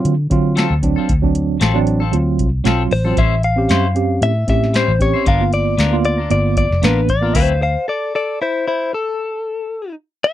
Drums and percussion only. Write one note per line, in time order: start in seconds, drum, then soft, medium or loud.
0.05 closed hi-hat medium
0.31 kick medium
0.31 closed hi-hat medium
0.57 snare loud
0.57 closed hi-hat medium
0.83 kick medium
0.83 closed hi-hat medium
1.09 kick loud
1.09 closed hi-hat medium
1.23 kick medium
1.35 closed hi-hat medium
1.61 snare medium
1.61 closed hi-hat medium
1.87 closed hi-hat medium
2.13 closed hi-hat medium
2.39 kick medium
2.39 closed hi-hat medium
2.65 snare loud
2.65 closed hi-hat medium
2.91 open hi-hat medium
3.17 kick medium
3.17 closed hi-hat medium
3.43 closed hi-hat medium
3.69 snare medium
3.69 closed hi-hat medium
3.96 closed hi-hat medium
4.22 closed hi-hat medium
4.48 kick medium
4.48 snare soft
4.48 closed hi-hat medium
4.64 snare soft
4.74 snare loud
4.74 closed hi-hat medium
5.00 kick medium
5.00 closed hi-hat medium
5.26 kick loud
5.26 closed hi-hat medium
5.53 closed hi-hat medium
5.79 snare medium
5.79 closed hi-hat medium
6.05 closed hi-hat medium
6.30 closed hi-hat medium
6.57 kick medium
6.57 closed hi-hat medium
6.72 snare soft
6.83 snare loud
6.83 closed hi-hat medium
7.09 kick medium
7.09 closed hi-hat medium
7.35 kick medium
7.35 closed hi-hat medium
7.35 crash medium